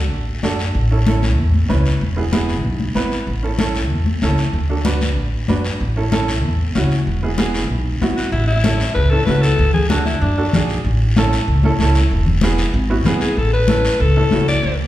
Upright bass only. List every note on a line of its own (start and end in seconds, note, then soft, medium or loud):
0.00 0.11 D2 medium
0.11 0.37 A1 medium
0.43 0.69 F#2 medium
0.74 1.38 A1 medium
1.38 1.63 E2 medium
1.69 1.95 C#2 medium
2.01 2.64 E1 medium
2.64 2.90 B1 medium
2.95 3.21 G#1 medium
3.27 3.90 A1 medium
3.90 4.16 E2 medium
4.22 4.47 C#2 medium
4.53 5.17 D2 medium
5.17 5.42 A1 medium
5.48 5.74 F#2 medium
5.81 6.43 A1 medium
6.43 6.69 E2 medium
6.75 7.01 C#2 medium
7.07 7.70 E1 medium
7.70 7.95 B1 medium
8.01 8.27 G#1 medium
8.32 8.83 A1 medium
8.96 9.21 C#2 medium
9.27 9.53 C#2 medium
9.59 10.09 D2 loud
10.21 10.47 F#2 loud
10.54 10.79 B1 medium
10.84 11.35 A1 medium
11.48 11.73 C#2 medium
11.79 12.05 C#2 medium
12.11 12.62 E1 medium
12.74 12.99 G#1 loud
13.05 13.30 G#1 medium
13.37 13.87 A1 medium
14.00 14.25 C#2 medium
14.32 14.57 C#2 medium
14.63 14.87 D2 medium